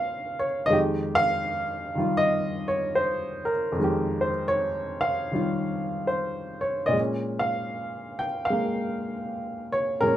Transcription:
0.00 0.67 A#2 medium
0.00 0.69 G#3 soft
0.00 0.71 A#3 soft
0.00 0.72 C#4 medium
0.00 0.72 C5 medium
0.00 0.39 C#5 medium
0.00 0.72 F5 medium
0.39 0.66 C#5 medium
0.66 3.71 F2 medium
0.66 1.94 D#3 medium
0.66 0.78 D#5 loud
0.70 3.77 G#3 medium
0.70 3.78 G4 medium
1.15 2.16 F5 loud
1.95 3.75 D#3 soft
1.95 3.78 G3 soft
1.95 3.78 F4 soft
2.17 2.67 D#5 loud
2.68 2.98 C#5 medium
2.95 3.51 C5 medium
3.45 4.21 A#4 medium
3.72 6.92 F2 medium
3.76 5.30 D#3 medium
3.76 6.91 G#3 soft
3.84 6.98 G4 medium
4.21 4.28 C5 medium
4.48 5.00 C#5 medium
5.01 6.06 F5 medium
5.31 6.93 D#3 soft
5.31 6.94 G3 soft
5.31 6.94 F4 soft
6.07 6.60 C5 medium
6.61 6.85 C#5 medium
6.86 10.00 A#2 soft
6.86 6.93 D5 medium
6.86 6.99 D#5 medium
6.93 8.49 G#3 soft
7.00 10.05 C#4 soft
7.39 8.18 F5 medium
8.19 8.26 G5 medium
8.45 9.72 F5 medium
8.50 10.02 G#3 soft
8.50 10.06 A#3 soft
9.72 10.03 C#5 medium
10.01 10.17 A#2 soft
10.01 10.17 G#3 soft
10.01 10.17 A#4 medium
10.07 10.17 C#4 medium

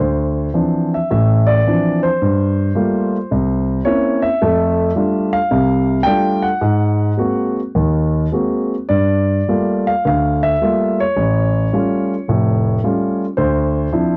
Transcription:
0.00 0.47 D2 medium
0.00 0.90 C5 medium
0.54 0.95 E3 soft
0.54 0.95 F3 soft
0.54 0.95 C4 soft
0.54 0.96 D4 soft
0.94 1.10 E5 medium
1.11 1.59 A1 medium
1.11 1.59 A2 medium
1.11 1.47 E5 medium
1.47 1.99 D5 medium
1.67 2.06 E3 soft
1.67 2.06 F3 soft
1.67 2.07 C4 soft
1.67 2.07 D4 soft
2.03 3.81 C5 medium
2.22 2.69 G2 medium
2.75 3.15 G3 soft
2.75 3.15 A3 soft
2.75 3.16 A#3 soft
2.75 3.16 F4 medium
3.31 3.79 C2 medium
3.85 4.25 A#3 soft
3.85 4.25 C4 soft
3.85 4.26 C#4 soft
3.85 4.26 E4 medium
3.85 4.21 C#5 medium
4.22 5.29 E5 medium
4.42 4.90 F2 medium
4.42 4.89 A3 medium
4.95 5.35 G3 soft
4.95 5.36 A3 soft
4.95 5.36 D4 soft
4.95 5.36 F4 soft
5.33 6.08 F5 medium
5.51 5.99 C2 medium
5.51 5.99 C3 medium
6.03 6.46 G3 medium
6.03 6.47 A3 soft
6.03 6.47 D4 soft
6.03 6.47 F4 medium
6.03 6.45 G5 medium
6.42 7.52 F#5 medium
6.61 7.11 G#2 medium
7.17 7.59 G#3 soft
7.17 7.59 A#3 soft
7.17 7.59 C4 soft
7.17 7.59 F#4 medium
7.75 8.25 D#2 medium
7.75 8.25 D#3 medium
8.32 8.73 G#3 soft
8.32 8.74 A#3 soft
8.32 8.74 C4 soft
8.32 8.74 F#4 soft
8.89 9.39 G2 medium
8.89 9.89 D5 medium
9.48 9.89 G3 soft
9.48 9.89 A3 soft
9.48 9.89 A#3 soft
9.48 9.89 F4 medium
9.87 10.03 F5 medium
10.05 10.54 D2 medium
10.05 10.54 D3 medium
10.05 10.45 F5 medium
10.43 11.00 E5 medium
10.61 11.01 G3 soft
10.61 11.01 A3 soft
10.61 11.01 A#3 soft
10.61 11.02 F4 soft
11.00 13.19 C#5 medium
11.17 11.65 A1 medium
11.73 12.13 G3 soft
11.73 12.13 A3 soft
11.73 12.13 C#4 soft
11.73 12.13 F4 soft
12.28 12.77 F1 medium
12.28 12.77 A2 medium
12.84 13.24 G3 soft
12.84 13.24 A3 soft
12.84 13.24 C#4 soft
12.84 13.24 F4 medium
13.37 13.86 D2 medium
13.37 14.17 C5 medium
13.93 14.17 F3 soft
13.93 14.17 C4 soft
13.93 14.17 D4 soft
13.93 14.17 E4 medium

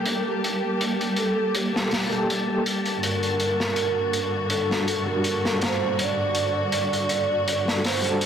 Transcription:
0.00 2.99 G3 medium
0.00 2.99 A#3 medium
0.00 8.26 A#3 medium
0.00 2.99 G4 medium
0.00 1.20 A#4 loud
0.00 8.26 A5 medium
0.05 closed hi-hat medium
0.44 closed hi-hat medium
0.81 closed hi-hat medium
1.01 closed hi-hat soft
1.16 1.55 A4 loud
1.16 closed hi-hat medium
1.55 2.25 G4 medium
1.55 closed hi-hat medium
1.73 1.88 A#3 medium
1.73 1.88 G4 medium
1.73 1.89 A4 medium
1.73 snare soft
1.91 snare medium
1.91 open hi-hat medium
2.10 2.43 A#3 medium
2.10 2.44 G4 medium
2.10 2.45 A4 medium
2.10 closed hi-hat soft
2.30 closed hi-hat medium
2.47 2.62 A#3 medium
2.47 2.62 G4 medium
2.47 2.63 A4 medium
2.66 closed hi-hat medium
2.86 closed hi-hat soft
3.03 8.26 G2 medium
3.03 8.26 D3 medium
3.03 8.26 F#4 medium
3.03 4.47 A#4 loud
3.03 closed hi-hat medium
3.23 closed hi-hat soft
3.40 closed hi-hat medium
3.60 snare soft
3.76 closed hi-hat medium
4.13 closed hi-hat medium
4.50 5.05 A4 medium
4.50 closed hi-hat medium
4.70 4.84 G3 medium
4.70 4.85 D4 medium
4.70 4.85 F#4 medium
4.70 4.86 A4 medium
4.70 snare soft
4.88 closed hi-hat medium
5.06 5.40 G3 medium
5.06 5.40 D4 medium
5.06 5.41 F#4 medium
5.06 5.59 A#4 medium
5.24 closed hi-hat medium
5.43 5.58 G3 medium
5.43 5.59 D4 medium
5.43 5.59 F#4 medium
5.43 5.60 A4 medium
5.43 snare soft
5.61 6.03 C5 loud
5.61 snare loud
5.61 closed hi-hat medium
5.99 7.85 D5 loud
5.99 closed hi-hat medium
6.35 closed hi-hat medium
6.72 closed hi-hat medium
6.93 closed hi-hat soft
7.09 closed hi-hat medium
7.48 closed hi-hat medium
7.65 7.80 G3 medium
7.65 7.81 D4 medium
7.65 7.81 F#4 medium
7.65 7.82 A4 medium
7.65 snare soft
7.84 8.26 C5 medium
7.84 snare soft
7.84 open hi-hat medium
8.02 8.26 G3 medium
8.02 8.26 D4 medium
8.02 8.26 F#4 medium
8.02 8.26 A4 medium
8.02 closed hi-hat soft
8.21 closed hi-hat medium

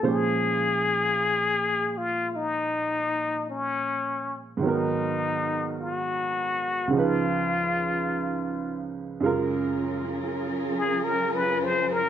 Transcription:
0.03 4.63 A#2 soft
0.03 4.63 F3 soft
0.03 4.63 G#3 soft
0.03 4.63 C#4 soft
0.03 4.63 C5 soft
0.07 1.99 G#4 medium
1.98 2.37 F4 medium
2.36 3.49 D#4 medium
3.50 4.42 C#4 medium
4.57 6.90 G#2 soft
4.57 6.91 D#3 soft
4.62 6.93 F#3 soft
4.62 6.95 B3 soft
4.62 5.76 D#4 medium
4.68 6.96 A#4 soft
5.82 7.00 F#4 medium
6.87 9.22 C#2 soft
6.87 9.20 C#3 soft
6.93 9.24 F3 soft
6.93 9.26 D#4 soft
6.99 8.88 F4 medium
6.99 9.27 B4 soft
9.20 12.09 F#2 soft
9.20 12.09 C#3 soft
9.20 12.09 F#3 medium
9.20 12.09 G#3 soft
9.20 12.09 C#4 medium
9.20 12.09 F4 medium
9.20 12.09 F4 soft
9.20 12.09 G#4 medium
9.20 12.09 A#4 medium
9.26 12.09 A#4 soft
10.78 11.05 G#4 medium
11.04 11.37 A#4 medium
11.35 11.65 B4 medium
11.64 11.94 C5 medium
11.92 12.09 A#4 medium

